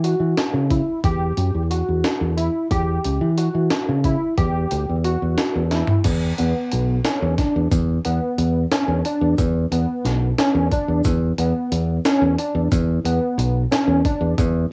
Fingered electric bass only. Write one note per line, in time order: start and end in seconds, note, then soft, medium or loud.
0.00 0.13 E3 medium
0.20 0.34 E3 medium
0.54 0.80 C#3 medium
1.04 1.31 E2 medium
1.37 1.51 F#2 medium
1.54 1.81 E2 medium
1.88 2.02 E2 medium
2.21 2.48 E2 medium
2.71 2.97 E2 medium
3.05 3.18 C#2 medium
3.21 3.48 E3 medium
3.55 3.68 E3 medium
3.89 4.15 C#3 medium
4.38 4.64 E2 medium
4.72 4.85 D2 medium
4.89 5.15 E2 medium
5.22 5.35 E2 medium
5.55 5.82 E2 medium
6.05 6.31 E2 medium
6.40 6.52 E2 medium
6.73 6.99 B1 medium
7.22 7.35 E2 medium
7.56 7.69 E2 medium
7.71 7.98 E2 medium
8.06 8.19 E2 medium
8.38 8.65 E2 medium
8.88 9.01 E2 medium
9.21 9.35 E2 medium
9.38 9.65 E2 loud
9.71 9.85 E2 medium
10.05 10.31 B1 medium
10.55 10.68 E2 medium
10.88 11.01 E2 medium
11.05 11.31 E2 medium
11.38 11.51 E2 medium
11.72 11.98 E2 medium
12.22 12.35 E2 medium
12.55 12.68 E2 medium
12.72 12.98 E2 loud
13.04 13.18 E2 medium
13.38 13.64 B1 medium
13.88 14.01 E2 medium
14.21 14.34 E2 medium
14.38 14.65 E2 loud